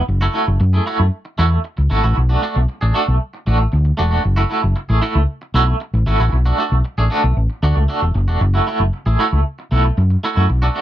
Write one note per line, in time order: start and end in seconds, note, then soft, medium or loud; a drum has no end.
0.08 0.26 F#1 medium
0.08 muted clean electric guitar stroke soft
0.21 0.33 A3 medium
0.21 0.33 E4 medium
0.21 0.34 F#4 medium
0.34 0.50 A3 medium
0.34 0.47 E4 medium
0.34 0.46 F#4 medium
0.47 0.57 F#1 medium
0.47 muted clean electric guitar stroke medium
0.60 0.78 F#2 loud
0.60 muted clean electric guitar stroke soft
0.73 0.85 A3 soft
0.73 0.86 E4 medium
0.73 0.87 G#4 soft
0.86 1.07 A3 medium
0.86 0.99 E4 medium
0.86 0.98 F#4 loud
0.99 1.08 F#2 loud
0.99 muted clean electric guitar stroke soft
1.25 muted clean electric guitar stroke soft
1.38 1.56 E2 medium
1.38 1.58 A3 medium
1.38 1.50 E4 medium
1.38 1.50 F#4 medium
1.51 muted clean electric guitar stroke soft
1.65 muted clean electric guitar stroke soft
1.77 1.87 C#2 medium
1.77 muted clean electric guitar stroke soft
1.90 2.00 G#1 medium
1.90 2.04 A3 medium
1.90 2.03 E4 medium
1.90 2.02 F#4 medium
2.04 2.13 A1 medium
2.04 2.15 A3 medium
2.04 2.16 E4 medium
2.04 2.16 F#4 medium
2.16 2.35 B1 medium
2.16 muted clean electric guitar stroke soft
2.29 2.41 A3 medium
2.29 2.42 D4 medium
2.29 2.42 F#4 medium
2.42 2.58 A3 medium
2.42 2.56 D4 medium
2.42 2.54 F#4 medium
2.56 2.65 B1 medium
2.56 muted clean electric guitar stroke medium
2.69 muted clean electric guitar stroke soft
2.81 2.91 A1 medium
2.81 2.93 A3 soft
2.81 2.94 D4 medium
2.81 2.95 G#4 medium
2.94 3.15 A3 medium
2.94 3.08 D4 medium
2.94 3.07 F#4 medium
3.08 3.17 B1 medium
3.08 muted clean electric guitar stroke soft
3.34 muted clean electric guitar stroke soft
3.47 3.65 A1 medium
3.47 3.67 A3 medium
3.47 3.59 D4 medium
3.47 3.58 F#4 medium
3.59 muted clean electric guitar stroke soft
3.72 3.91 D2 medium
3.72 muted clean electric guitar stroke soft
3.85 muted clean electric guitar stroke soft
3.97 4.17 E1 medium
3.97 4.11 A3 medium
3.97 4.10 D4 medium
3.97 4.10 F#4 medium
4.11 4.23 A3 soft
4.11 4.24 D4 medium
4.11 4.24 F#4 medium
4.24 4.43 F#1 medium
4.24 muted clean electric guitar stroke soft
4.36 4.49 A3 medium
4.36 4.49 E4 medium
4.36 4.50 F#4 medium
4.50 4.66 A3 medium
4.50 4.62 E4 medium
4.50 4.61 F#4 medium
4.63 4.73 F#1 medium
4.63 muted clean electric guitar stroke soft
4.76 muted clean electric guitar stroke soft
4.89 4.99 A1 medium
4.89 5.00 A3 medium
4.89 5.01 E4 medium
4.89 5.02 G#4 medium
5.01 5.23 A3 medium
5.01 5.15 E4 medium
5.01 5.14 F#4 medium
5.15 5.24 C#2 medium
5.15 muted clean electric guitar stroke soft
5.42 muted clean electric guitar stroke soft
5.54 5.72 B1 medium
5.54 5.75 A3 medium
5.54 5.67 E4 loud
5.54 5.66 F#4 loud
5.67 muted clean electric guitar stroke medium
5.81 muted clean electric guitar stroke soft
5.94 6.03 A1 medium
5.94 muted clean electric guitar stroke soft
6.06 6.16 G#1 medium
6.06 6.20 A3 medium
6.06 6.19 E4 medium
6.06 6.18 F#4 medium
6.20 6.29 A1 medium
6.20 6.31 A3 soft
6.20 6.33 E4 medium
6.20 6.32 F#4 medium
6.33 6.51 B1 medium
6.33 muted clean electric guitar stroke soft
6.46 6.57 A3 medium
6.46 6.58 D4 medium
6.46 6.59 F#4 medium
6.58 6.75 A3 medium
6.58 6.71 D4 medium
6.58 6.71 F#4 medium
6.72 6.81 B1 medium
6.72 muted clean electric guitar stroke soft
6.85 muted clean electric guitar stroke soft
6.98 7.07 A1 medium
6.98 7.09 A3 medium
6.98 7.10 D4 medium
6.98 7.12 G#4 medium
7.10 7.31 A3 medium
7.10 7.24 D4 medium
7.10 7.23 F#4 loud
7.24 7.33 B1 medium
7.24 muted clean electric guitar stroke soft
7.37 7.46 A1 medium
7.50 muted clean electric guitar stroke soft
7.63 7.72 D2 medium
7.63 7.83 A3 medium
7.63 7.76 D4 medium
7.63 7.75 F#4 medium
7.76 7.85 C#2 medium
7.76 muted clean electric guitar stroke soft
7.88 8.09 A3 medium
7.88 8.01 D4 medium
7.88 8.00 F#4 medium
8.02 8.11 E1 medium
8.02 muted clean electric guitar stroke soft
8.15 8.28 F#1 medium
8.15 muted clean electric guitar stroke soft
8.28 8.37 E1 medium
8.28 8.40 A3 soft
8.28 8.41 D4 medium
8.28 8.41 F#4 medium
8.41 8.59 F#1 medium
8.41 muted clean electric guitar stroke soft
8.54 8.66 A3 medium
8.54 8.67 E4 medium
8.54 8.67 F#4 medium
8.67 8.83 A3 medium
8.67 8.80 E4 medium
8.67 8.79 F#4 medium
8.80 8.89 F#1 medium
8.80 muted clean electric guitar stroke medium
8.93 muted clean electric guitar stroke soft
9.06 9.15 A1 medium
9.06 9.18 A3 soft
9.06 9.19 E4 medium
9.06 9.20 G#4 medium
9.19 9.40 A3 medium
9.19 9.32 E4 medium
9.19 9.31 F#4 medium
9.33 9.41 C#2 medium
9.33 muted clean electric guitar stroke soft
9.59 muted clean electric guitar stroke soft
9.71 9.89 B1 medium
9.71 9.92 A3 medium
9.71 9.85 E4 medium
9.71 9.84 F#4 medium
9.85 muted clean electric guitar stroke soft
9.98 10.15 F#2 medium
9.98 muted clean electric guitar stroke soft
10.10 muted clean electric guitar stroke soft
10.24 10.36 A3 medium
10.24 10.36 E4 loud
10.24 10.35 F#4 medium
10.36 10.46 F#2 medium
10.36 10.48 A3 soft
10.36 10.49 E4 medium
10.36 10.49 F#4 medium
10.50 10.68 B1 medium
10.50 muted clean electric guitar stroke soft
10.62 10.74 A3 medium
10.62 10.74 D4 medium
10.62 10.75 F#4 medium
10.75 10.81 A3 medium
10.75 10.81 D4 medium
10.75 10.81 F#4 medium